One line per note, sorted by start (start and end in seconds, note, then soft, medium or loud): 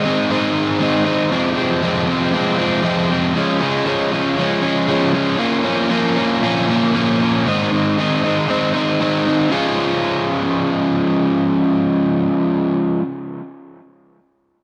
0.00 0.29 D#3 medium
0.00 0.31 D#4 medium
0.05 0.30 G#3 medium
0.05 0.30 C4 medium
0.29 1.06 G#2 medium
0.29 0.78 D#3 loud
0.29 0.79 G#3 loud
0.29 0.80 C4 loud
0.29 0.81 D#4 loud
0.79 1.29 D#3 medium
0.79 1.06 G#3 medium
0.79 1.05 C4 medium
0.79 1.04 D#4 medium
1.05 1.31 G#3 medium
1.05 1.30 C4 medium
1.05 1.30 D#4 medium
1.31 1.80 F2 medium
1.31 1.81 C3 medium
1.31 1.58 F3 medium
1.31 1.57 G#3 medium
1.31 1.55 C4 medium
1.56 1.83 F3 medium
1.56 1.84 G#3 medium
1.56 1.83 C4 medium
1.82 2.33 F2 medium
1.82 2.31 C3 medium
1.82 2.09 F3 medium
1.82 2.08 G#3 loud
1.82 2.06 C4 medium
2.07 2.33 F3 medium
2.07 2.34 G#3 medium
2.07 2.34 C4 medium
2.32 2.83 C3 medium
2.32 2.60 F3 medium
2.32 2.58 G#3 medium
2.32 2.56 C4 medium
2.58 2.84 F3 medium
2.58 2.85 G#3 medium
2.58 2.85 C4 medium
2.83 3.33 F2 loud
2.83 3.34 C3 medium
2.83 3.12 F3 loud
2.83 3.12 G#3 loud
2.83 3.09 C4 loud
3.10 3.36 F3 soft
3.10 3.37 G#3 medium
3.10 3.34 C4 medium
3.36 3.85 C#3 medium
3.36 3.63 F3 medium
3.36 3.62 G#3 medium
3.36 3.60 C#4 medium
3.61 3.86 F3 medium
3.61 3.87 G#3 medium
3.61 3.88 C#4 medium
3.86 4.36 C#3 medium
3.86 4.14 F3 medium
3.86 4.13 G#3 medium
3.86 4.12 C#4 medium
4.12 4.38 F3 medium
4.12 4.39 G#3 medium
4.12 4.39 C#4 medium
4.38 4.87 C#3 medium
4.38 4.65 F3 medium
4.38 4.63 G#3 medium
4.38 4.61 C#4 medium
4.62 4.89 F3 medium
4.62 4.90 G#3 medium
4.62 4.90 C#4 medium
4.88 5.38 C#3 loud
4.88 5.16 F3 medium
4.88 5.14 G#3 loud
4.88 5.12 C#4 loud
5.13 5.39 F3 medium
5.13 5.39 G#3 medium
5.13 5.38 C#4 medium
5.38 5.89 A#2 medium
5.38 5.67 F3 medium
5.38 5.65 A#3 medium
5.38 5.63 C#4 loud
5.64 5.90 F3 soft
5.64 5.90 A#3 medium
5.64 5.92 C#4 medium
5.90 6.40 A#2 medium
5.90 6.19 F3 medium
5.90 6.16 A#3 medium
5.90 6.15 C#4 medium
6.16 6.43 F3 medium
6.16 6.42 A#3 medium
6.16 6.43 C#4 medium
6.41 6.93 A#2 medium
6.41 6.71 F3 medium
6.41 6.68 A#3 medium
6.41 6.67 C#4 medium
6.68 6.95 F3 medium
6.68 6.95 A#3 medium
6.68 6.96 C#4 medium
6.94 7.44 A#2 medium
6.94 7.23 F3 medium
6.94 7.21 A#3 medium
6.94 7.19 C#4 medium
7.20 7.47 F3 medium
7.20 7.45 A#3 medium
7.20 7.44 C#4 medium
7.45 7.96 G#2 medium
7.45 7.97 D#3 medium
7.45 7.72 G#3 medium
7.45 7.71 C4 medium
7.45 7.70 D#4 loud
7.71 7.98 G#3 medium
7.71 7.99 C4 medium
7.71 7.99 D#4 medium
7.97 8.49 G#2 medium
7.97 8.47 D#3 medium
7.97 8.25 G#3 medium
7.97 8.24 C4 medium
7.97 8.22 D#4 medium
8.23 8.48 G#3 medium
8.23 8.49 C4 medium
8.23 8.50 D#4 medium
8.48 9.00 D#3 medium
8.48 8.75 G#3 medium
8.48 8.74 C4 medium
8.48 8.72 D#4 medium
8.74 9.00 G#3 soft
8.74 9.01 C4 medium
8.74 9.02 D#4 medium
9.00 9.50 G#2 medium
9.00 9.49 D#3 medium
9.00 9.27 G#3 medium
9.00 9.26 C4 medium
9.00 9.24 D#4 medium
9.26 9.50 G#3 soft
9.26 9.51 C4 medium
9.26 9.50 D#4 medium
9.49 12.99 C#3 medium
9.49 13.01 F3 medium
9.49 13.02 G#3 medium
9.49 13.03 C#4 medium
9.54 13.04 F4 medium